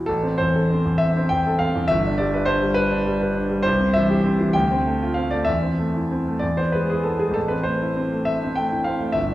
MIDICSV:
0, 0, Header, 1, 2, 480
1, 0, Start_track
1, 0, Key_signature, 0, "minor"
1, 0, Tempo, 613497
1, 62, Time_signature, 6, 3, 24, 8
1, 1021, Tempo, 587659
1, 3421, Tempo, 622407
1, 5821, Tempo, 599401
1, 7413, End_track
2, 0, Start_track
2, 0, Title_t, "Grand piano"
2, 0, Program_c, 0, 0
2, 0, Control_c, 0, 64, 127
2, 0, Note_on_c, 0, 47, 39
2, 0, Note_on_c, 0, 64, 37
2, 0, Note_on_c, 0, 71, 44
2, 49, Note_on_c, 0, 69, 81
2, 68, Note_on_c, 0, 33, 59
2, 76, Control_c, 0, 64, 0
2, 79, Note_off_c, 0, 64, 0
2, 81, Note_off_c, 0, 71, 0
2, 84, Note_off_c, 0, 47, 0
2, 182, Note_on_c, 0, 60, 47
2, 192, Control_c, 0, 64, 127
2, 295, Note_on_c, 0, 72, 78
2, 297, Note_off_c, 0, 69, 0
2, 321, Note_on_c, 0, 40, 44
2, 376, Note_off_c, 0, 60, 0
2, 435, Note_on_c, 0, 69, 47
2, 506, Note_off_c, 0, 40, 0
2, 554, Note_on_c, 0, 60, 50
2, 622, Note_off_c, 0, 69, 0
2, 669, Note_on_c, 0, 40, 45
2, 741, Note_off_c, 0, 60, 0
2, 766, Note_on_c, 0, 76, 84
2, 779, Note_off_c, 0, 72, 0
2, 914, Note_on_c, 0, 60, 50
2, 1010, Note_on_c, 0, 79, 87
2, 1012, Note_off_c, 0, 76, 0
2, 1014, Note_off_c, 0, 40, 0
2, 1026, Note_on_c, 0, 40, 45
2, 1101, Note_off_c, 0, 60, 0
2, 1154, Note_on_c, 0, 69, 52
2, 1220, Note_off_c, 0, 40, 0
2, 1251, Note_on_c, 0, 77, 70
2, 1260, Note_off_c, 0, 79, 0
2, 1269, Note_on_c, 0, 60, 47
2, 1344, Note_off_c, 0, 69, 0
2, 1386, Note_on_c, 0, 40, 50
2, 1459, Note_off_c, 0, 60, 0
2, 1476, Note_off_c, 0, 33, 0
2, 1488, Note_on_c, 0, 76, 96
2, 1498, Note_off_c, 0, 77, 0
2, 1505, Note_off_c, 0, 40, 0
2, 1513, Note_on_c, 0, 31, 64
2, 1519, Control_c, 0, 64, 0
2, 1642, Note_on_c, 0, 62, 50
2, 1663, Control_c, 0, 64, 127
2, 1733, Note_on_c, 0, 74, 83
2, 1734, Note_off_c, 0, 76, 0
2, 1751, Note_on_c, 0, 55, 47
2, 1822, Note_off_c, 0, 62, 0
2, 1864, Note_on_c, 0, 71, 55
2, 1936, Note_off_c, 0, 55, 0
2, 1960, Note_on_c, 0, 72, 91
2, 1975, Note_off_c, 0, 74, 0
2, 1980, Note_on_c, 0, 62, 53
2, 2052, Note_off_c, 0, 71, 0
2, 2101, Note_on_c, 0, 55, 54
2, 2169, Note_off_c, 0, 62, 0
2, 2196, Note_on_c, 0, 71, 96
2, 2207, Note_off_c, 0, 72, 0
2, 2332, Note_on_c, 0, 62, 59
2, 2441, Note_off_c, 0, 55, 0
2, 2453, Note_on_c, 0, 55, 54
2, 2526, Note_off_c, 0, 62, 0
2, 2566, Note_off_c, 0, 71, 0
2, 2579, Note_on_c, 0, 71, 56
2, 2647, Note_off_c, 0, 55, 0
2, 2690, Note_on_c, 0, 62, 51
2, 2769, Note_off_c, 0, 71, 0
2, 2808, Note_on_c, 0, 55, 56
2, 2884, Note_off_c, 0, 62, 0
2, 2906, Note_off_c, 0, 31, 0
2, 2916, Note_on_c, 0, 72, 93
2, 2931, Note_off_c, 0, 55, 0
2, 2942, Note_on_c, 0, 36, 72
2, 2948, Control_c, 0, 64, 0
2, 3054, Note_on_c, 0, 60, 49
2, 3078, Control_c, 0, 64, 127
2, 3166, Note_off_c, 0, 72, 0
2, 3169, Note_on_c, 0, 76, 90
2, 3191, Note_on_c, 0, 52, 46
2, 3249, Note_off_c, 0, 60, 0
2, 3305, Note_on_c, 0, 67, 55
2, 3379, Note_off_c, 0, 52, 0
2, 3420, Note_on_c, 0, 60, 54
2, 3493, Note_off_c, 0, 67, 0
2, 3546, Note_on_c, 0, 52, 52
2, 3606, Note_off_c, 0, 60, 0
2, 3636, Note_off_c, 0, 36, 0
2, 3644, Note_on_c, 0, 79, 92
2, 3649, Note_off_c, 0, 76, 0
2, 3658, Note_off_c, 0, 52, 0
2, 3663, Note_on_c, 0, 38, 60
2, 3668, Control_c, 0, 64, 0
2, 3786, Note_on_c, 0, 60, 53
2, 3821, Control_c, 0, 64, 127
2, 3897, Note_on_c, 0, 57, 46
2, 3968, Note_off_c, 0, 60, 0
2, 4026, Note_on_c, 0, 65, 49
2, 4083, Note_off_c, 0, 57, 0
2, 4113, Note_on_c, 0, 77, 63
2, 4122, Note_off_c, 0, 79, 0
2, 4133, Note_on_c, 0, 60, 43
2, 4208, Note_off_c, 0, 65, 0
2, 4240, Note_off_c, 0, 77, 0
2, 4241, Note_on_c, 0, 74, 75
2, 4252, Note_on_c, 0, 57, 43
2, 4323, Note_off_c, 0, 60, 0
2, 4348, Note_on_c, 0, 76, 87
2, 4352, Note_off_c, 0, 38, 0
2, 4366, Note_off_c, 0, 74, 0
2, 4370, Note_on_c, 0, 40, 50
2, 4371, Note_off_c, 0, 57, 0
2, 4383, Control_c, 0, 64, 0
2, 4485, Note_on_c, 0, 60, 37
2, 4540, Control_c, 0, 64, 127
2, 4605, Note_on_c, 0, 57, 40
2, 4686, Note_off_c, 0, 60, 0
2, 4748, Note_on_c, 0, 64, 39
2, 4807, Note_off_c, 0, 57, 0
2, 4865, Note_on_c, 0, 60, 40
2, 4938, Note_off_c, 0, 64, 0
2, 4991, Note_on_c, 0, 57, 41
2, 5057, Note_off_c, 0, 60, 0
2, 5080, Note_on_c, 0, 74, 76
2, 5081, Note_off_c, 0, 40, 0
2, 5093, Note_off_c, 0, 76, 0
2, 5103, Note_on_c, 0, 40, 47
2, 5107, Note_off_c, 0, 57, 0
2, 5115, Control_c, 0, 64, 0
2, 5212, Note_off_c, 0, 74, 0
2, 5217, Note_on_c, 0, 72, 64
2, 5229, Note_on_c, 0, 59, 43
2, 5236, Control_c, 0, 64, 127
2, 5334, Note_on_c, 0, 71, 66
2, 5341, Note_off_c, 0, 72, 0
2, 5355, Note_on_c, 0, 56, 38
2, 5419, Note_off_c, 0, 59, 0
2, 5459, Note_off_c, 0, 71, 0
2, 5467, Note_on_c, 0, 68, 60
2, 5480, Note_on_c, 0, 64, 40
2, 5542, Note_off_c, 0, 56, 0
2, 5574, Note_on_c, 0, 69, 63
2, 5585, Note_off_c, 0, 68, 0
2, 5586, Note_on_c, 0, 59, 37
2, 5664, Note_off_c, 0, 64, 0
2, 5696, Note_on_c, 0, 68, 61
2, 5698, Note_off_c, 0, 69, 0
2, 5706, Note_on_c, 0, 56, 36
2, 5774, Note_off_c, 0, 59, 0
2, 5783, Note_on_c, 0, 33, 53
2, 5799, Note_off_c, 0, 40, 0
2, 5807, Note_on_c, 0, 69, 77
2, 5817, Note_off_c, 0, 68, 0
2, 5821, Note_off_c, 0, 56, 0
2, 5835, Control_c, 0, 64, 0
2, 5924, Note_on_c, 0, 71, 61
2, 5934, Note_off_c, 0, 69, 0
2, 5940, Note_on_c, 0, 60, 37
2, 5969, Control_c, 0, 64, 127
2, 6044, Note_on_c, 0, 72, 67
2, 6055, Note_off_c, 0, 71, 0
2, 6062, Note_on_c, 0, 57, 39
2, 6137, Note_off_c, 0, 60, 0
2, 6193, Note_on_c, 0, 64, 41
2, 6260, Note_off_c, 0, 57, 0
2, 6310, Note_on_c, 0, 60, 44
2, 6386, Note_off_c, 0, 64, 0
2, 6436, Note_on_c, 0, 57, 39
2, 6505, Note_off_c, 0, 60, 0
2, 6540, Note_on_c, 0, 76, 76
2, 6543, Note_off_c, 0, 72, 0
2, 6688, Note_on_c, 0, 60, 43
2, 6782, Note_on_c, 0, 79, 76
2, 6783, Note_off_c, 0, 76, 0
2, 6788, Note_off_c, 0, 57, 0
2, 6800, Note_on_c, 0, 57, 41
2, 6868, Note_off_c, 0, 60, 0
2, 6912, Note_on_c, 0, 64, 43
2, 6983, Note_off_c, 0, 57, 0
2, 7012, Note_on_c, 0, 77, 62
2, 7021, Note_off_c, 0, 79, 0
2, 7035, Note_on_c, 0, 60, 41
2, 7098, Note_off_c, 0, 64, 0
2, 7142, Note_on_c, 0, 57, 41
2, 7210, Note_off_c, 0, 33, 0
2, 7219, Note_off_c, 0, 60, 0
2, 7238, Note_on_c, 0, 76, 78
2, 7255, Note_off_c, 0, 77, 0
2, 7260, Note_on_c, 0, 31, 57
2, 7261, Note_off_c, 0, 57, 0
2, 7277, Control_c, 0, 64, 0
2, 7411, Control_c, 0, 64, 127
2, 7413, Note_off_c, 0, 31, 0
2, 7413, Note_off_c, 0, 76, 0
2, 7413, End_track
0, 0, End_of_file